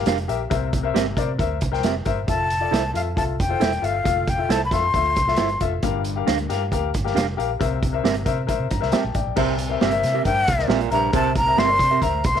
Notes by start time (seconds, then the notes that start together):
Already playing: G4 A#4 F5
0.06 F1 D4 G4 A#4 F5, snare, closed hi-hat
0.18 closed hi-hat
0.28 A#1 G4 A#4 E5, closed hi-hat
0.50 C2 C3 A#4 C5 E5, kick, closed hi-hat
0.73 kick, closed hi-hat
0.83 A#4 C5 E5
0.94 G1 C4 G4 A#4 E5, snare, closed hi-hat
1.17 C3 A#4 C5 D5, kick, closed hi-hat
1.38 D2 A#4 C5 E5, kick, closed hi-hat
1.61 C2, kick, closed hi-hat
1.72 A#4 C5 G5, snare
1.82 F1 C4 G4 A#4 E5, snare, closed hi-hat
2.05 G1 A#4 C5 E5, kick, closed hi-hat
2.27 F1 F4 A4 E5 A5, kick, closed hi-hat
2.50 closed hi-hat
2.60 F4 A4 D5
2.71 C2 E4 A4 C5 E5, snare, closed hi-hat
2.94 F2 F4 A4 E5 F5, closed hi-hat
3.16 C2 F4 A4 E5 A5, kick, closed hi-hat
3.40 F1 G5, kick, closed hi-hat
3.49 F4 A4 C5
3.60 E1 E4 A4 C5 E5, snare, closed hi-hat
3.72 closed hi-hat
3.82 G1 F4 A4 E5 F5, closed hi-hat
4.04 F1 F4 A4 F5, kick, closed hi-hat
4.28 G5, kick, closed hi-hat
4.38 F4 A4 E5
4.49 C2 E4 A4 C5 E5 A5, snare, closed hi-hat
4.65 B5
4.71 F2 F4 A4 E5 C6, kick, snare, closed hi-hat
4.94 D2 F4 A4 E5, kick, closed hi-hat
5.16 C2, kick, closed hi-hat
5.27 F4 A4 E5, snare
5.36 G1 E4 A4 C5 E5, snare, closed hi-hat
5.49 closed hi-hat
5.61 F1 F4 A4 E5, kick, closed hi-hat
5.83 G1 G2 G4 A#4 F5, kick, closed hi-hat
6.04 closed hi-hat
6.16 G4 A#4 F5
6.27 D2 D4 G4 A#4 F5, snare, closed hi-hat
6.38 closed hi-hat
6.49 G2 G4 A#4 F5, snare, closed hi-hat
6.72 D2 G4 A#4 F5, kick, closed hi-hat
6.94 G1, kick, closed hi-hat
7.04 G4 A#4 F5, snare
7.15 F1 D4 G4 A#4 F5, snare, closed hi-hat
7.37 A#1 G4 A#4 F5, closed hi-hat
7.60 C2 C3 A#4 C5 E5, kick, closed hi-hat
7.83 kick, closed hi-hat
7.93 A#4 C5 E5
8.04 G1 C4 G4 A#4 E5, snare, closed hi-hat
8.14 closed hi-hat
8.26 C3 A#4 C5 E5, kick, closed hi-hat
8.47 A#4 C5 E5, kick, closed hi-hat
8.60 C3
8.71 G2 A#5, kick, closed hi-hat
8.81 C2 A#4 C5 E5, snare
8.92 C4 G4 A#4 E5 G5 A5, snare, closed hi-hat
9.04 A#1
9.15 A1 D5 G5, kick, closed hi-hat
9.27 A#1
9.36 C2 C3 A#4 C5 E5, kick, crash
9.58 closed hi-hat
9.69 A#4 C5 E5
9.81 G1 C4 G4 A#4 E5, snare
9.91 A#4 C5 E5, closed hi-hat
10.03 C3, snare, closed hi-hat
10.14 C4 G4 A#4 E5
10.25 G2 A#4 C5 E5 G5, kick, closed hi-hat
10.48 C2, kick, closed hi-hat
10.58 A#4 C5 E5, snare
10.68 A#1 A#2 C4 G4 A#4 E5, snare
10.81 closed hi-hat
10.91 A#1 G2 A#4 C5 E5 A#5, closed hi-hat
11.12 C2 C3 A#4 C5 E5 A5, kick, closed hi-hat
11.35 A#5, kick, closed hi-hat
11.47 A#4 C5 E5
11.57 G1 C4 G4 A#4 E5 C6, snare
11.68 A#4 C5 D5
11.79 C3, kick, closed hi-hat
11.91 C4 G4 A#4 E5
12.01 D2 A#4 C5 E5 A#5, kick, closed hi-hat
12.24 C2 C6, kick, closed hi-hat
12.35 A#4 C5 E5, snare